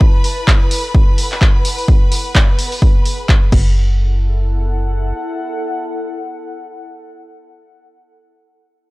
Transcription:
Already playing: ambient pad E4 B4 A5, violin section B4 B5
0.01 kick
0.24 ambient pad A4, open hi-hat
0.48 kick, clap
0.71 ambient pad F#5, open hi-hat
0.95 kick
1.18 open hi-hat
1.32 clap
1.41 kick, clap
1.65 open hi-hat
1.78 open hi-hat
1.88 ambient pad B3, kick
2.09 ambient pad G#4, open hi-hat
2.35 kick, clap
2.59 open hi-hat
2.72 open hi-hat
2.82 kick
3.05 open hi-hat
3.29 kick, clap
3.52 fm bass F#1, ambient pad E4, kick, crash
3.60 ambient pad A4
3.91 ambient pad F#5

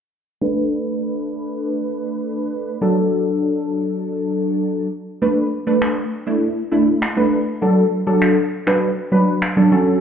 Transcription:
0.41 analog polysynth A3 D4 B4
2.81 analog polysynth F#3 D4 A4
5.22 analog polysynth A3 D4 B4
5.67 analog polysynth A3 D4 B4
5.82 finger snap
6.27 analog polysynth A3 D4 E4
6.72 analog polysynth A3 D4 E4
7.02 finger snap
7.17 analog polysynth A3 D4 B4
7.62 analog polysynth F#3 D4 A4
8.07 analog polysynth F#3 D4 A4
8.22 finger snap
8.67 analog polysynth F#3 D4 B4, finger snap
9.12 analog polysynth F#3 D4 B4
9.42 finger snap
9.57 analog polysynth F#3 D4 A4
9.72 analog polysynth F#3 C#4 A4

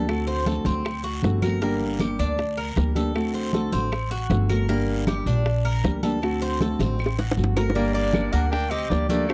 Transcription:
Already playing: upright bass D2, cuban tres A4
0.09 nylon-string guitar D3 A3 C4 F#4, high bongo, long guiro, claves
0.27 cuban tres C5, high bongo, high conga
0.46 nylon-string guitar D3 A3 C4 F#4, cuban tres A4, high bongo, high conga, short guiro
0.65 upright bass D2, cuban tres C4, high conga, short guiro
0.85 muted nylon-string guitar stroke, high bongo, high conga, long guiro, claves
1.04 cuban tres F#4, high bongo, high conga
1.23 upright bass G1, nylon-string guitar D3 A3 C4 F#4, high bongo, low bongo, high conga, short guiro
1.42 nylon-string guitar A3 C4 F#4, cuban tres A#4, high bongo, high conga, short guiro, claves
1.61 nylon-string guitar D3 G3 A#3 D4 G4, cuban tres A#3, high bongo, high conga, long guiro
1.81 high conga
2.00 nylon-string guitar G3 A#3 D4 G4, cuban tres G4, high bongo, high conga, short guiro, claves
2.19 upright bass D2, cuban tres D4, high conga, short guiro
2.38 muted nylon-string guitar stroke, high bongo, high conga, long guiro
2.57 cuban tres A#4, high conga, claves
2.76 upright bass D2, nylon-string guitar G3 A#3 D4 G4, high bongo, low bongo, high conga, short guiro
2.95 nylon-string guitar G3 A#3 D4 G4, cuban tres A4, high conga, short guiro
3.15 nylon-string guitar D3 A3 C4 F#4, high bongo, high conga, long guiro, claves
3.34 cuban tres C5, high bongo, high conga
3.53 nylon-string guitar D3 A3 C4 F#4, cuban tres A4, high bongo, high conga, short guiro
3.72 upright bass A1, cuban tres C4, high conga, short guiro
3.92 muted nylon-string guitar stroke, high bongo, high conga, long guiro, claves
4.11 cuban tres F#4, high bongo, high conga
4.30 upright bass G1, nylon-string guitar D3 A3 C4 F#4, high bongo, low bongo, high conga, short guiro
4.49 nylon-string guitar A3 C4 F#4, cuban tres A#4, high bongo, high conga, short guiro, claves
4.68 nylon-string guitar D3 G3 A#3 D4 G4, cuban tres A#3, high bongo, high conga, long guiro
4.88 high conga
5.07 nylon-string guitar G3 A#3 D4 G4, cuban tres G4, high bongo, high conga, short guiro, claves
5.26 upright bass A#1, cuban tres D4, high conga, short guiro
5.46 muted nylon-string guitar stroke, high bongo, high conga, long guiro
5.65 cuban tres A#4, high conga, claves
5.84 upright bass D2, nylon-string guitar G3 A#3 D4 G4, high bongo, low bongo, high conga, short guiro
6.03 nylon-string guitar G3 A#3 D4 G4, cuban tres A4, high conga, short guiro
6.22 nylon-string guitar D3 A3 C4 F#4, high bongo, high conga, long guiro, claves
6.42 cuban tres C5, high bongo, high conga
6.60 nylon-string guitar D3 A3 C4 F#4, cuban tres A4, high bongo, high conga, short guiro
6.79 upright bass A1, cuban tres C4, high bongo, high conga, short guiro
6.99 muted nylon-string guitar stroke, high conga, long guiro, claves
7.06 high bongo
7.18 cuban tres F#4, low bongo, high conga
7.31 low bongo
7.37 upright bass G1, nylon-string guitar D3 A3 C4 F#4, high conga, short guiro
7.44 low bongo
7.56 nylon-string guitar A3 C4 F#4, cuban tres A#4, low bongo, short guiro, claves
7.70 low bongo
7.75 nylon-string guitar D3 G3 A#3 D4 G4, cuban tres A#3, trumpet A#3, clarinet D5, high bongo, high conga, long guiro
7.94 trumpet A#3, cuban tres D4, clarinet D5, high bongo, high conga
8.13 nylon-string guitar G3 A#3 D4 G4, high bongo, high conga, short guiro, claves
8.32 upright bass D2, cuban tres A#3, trumpet D4, clarinet F#5, high bongo, high conga, short guiro
8.50 trumpet D4, clarinet G5, muted nylon-string guitar stroke, high bongo, high conga, long guiro
8.69 trumpet C4, cuban tres G4, clarinet D#5, high conga, claves
8.90 upright bass D2, nylon-string guitar G3 A#3 D4 G4, trumpet A#3, clarinet D5, high bongo, low bongo, high conga, short guiro
9.09 nylon-string guitar G3 A#3 D4 G4, cuban tres A3, trumpet A#3, clarinet D5, high bongo, high conga, short guiro
9.28 nylon-string guitar D3 A3 C4 F#4, trumpet A3, clarinet C5, high bongo, high conga, long guiro, claves

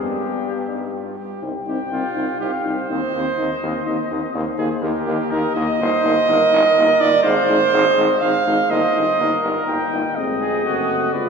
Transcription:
Already playing: bass trombone G2, trombone G3, french horn B3, flugelhorn D4, trumpet G4
0.41 flugelhorn D4
0.68 flugelhorn D#4
0.95 flugelhorn F4
1.17 flugelhorn G4
1.42 bass trombone C2, trombone C4, french horn D#4, trumpet G5
1.66 bass trombone C2, trombone C4, french horn D#4, flugelhorn G4
1.91 bass trombone C2, trombone C4, french horn D#4, flugelhorn F4
2.15 bass trombone C2, trombone C4, french horn D#4
2.40 bass trombone C2, trombone C4, french horn D#4, flugelhorn G4, trumpet F5
2.65 bass trombone C2, trombone C4, french horn D#4, flugelhorn C5
2.90 bass trombone D#2, trombone C4, french horn D#4, trumpet D#5
3.13 bass trombone D#2, trombone C4, french horn D#4
3.38 bass trombone D#2, trombone C4, french horn D#4
3.63 bass trombone D#2, trombone C4, french horn D#4
3.87 bass trombone D#2, trombone C4, french horn D#4
4.11 bass trombone D#2, trombone C4, french horn D#4
4.34 bass trombone D#2, trombone A#3, french horn D#4, trumpet C5
4.58 bass trombone D#2, trombone A#3, french horn D#4, flugelhorn G#4
4.82 bass trombone D#2, trombone A#3, french horn D#4, flugelhorn G4, trumpet A#4
5.06 bass trombone D#2, trombone A#3, french horn D#4
5.31 bass trombone D#2, trombone A#3, french horn D#4, flugelhorn A#4, trumpet D#5
5.55 bass trombone D#2, trombone A#3, french horn D#4, flugelhorn D#5
5.80 bass trombone G1, trombone A#3, french horn D#4, trumpet C5
6.04 bass trombone G1, trombone A#3, french horn D#4
6.28 bass trombone G1, trombone A#3, french horn D#4, trumpet A#4
6.52 bass trombone G1, trombone A#3, french horn D#4
6.77 bass trombone G1, trombone A#3, french horn D#4
7.00 bass trombone G1, trombone A#3, french horn D#4, flugelhorn D5
7.24 bass trombone G#1, trombone G#3, french horn D#4, flugelhorn C5, trumpet F5
7.49 bass trombone G#1, trombone G#3, french horn D#4
7.73 bass trombone G#1, trombone G#3, french horn D#4, trumpet D#5
7.97 bass trombone G#1, trombone G#3, french horn D#4
8.21 bass trombone G#1, trombone G#3, french horn D#4, flugelhorn F5
8.45 bass trombone G#1, trombone G#3, french horn D#4
8.69 bass trombone G1, trombone A#3, french horn D#4, trumpet C5, flugelhorn D#5
8.95 bass trombone G1, trombone A#3, french horn D#4
9.19 bass trombone G1, trombone A#3, french horn D#4, trumpet A#4
9.43 bass trombone G1, trombone A#3, french horn D#4, flugelhorn A#4
9.67 bass trombone G1, trombone A#3, french horn D#4, trumpet G5
9.92 bass trombone G1, trombone A#3, french horn D#4
10.16 bass trombone F1, trombone G#3, french horn C4, trumpet D#5
10.40 flugelhorn G#4
10.65 bass trombone F#1, trombone A3, french horn C4, flugelhorn F#4
11.13 bass trombone G1, trombone G#3, french horn F4, flugelhorn B4, trumpet D5

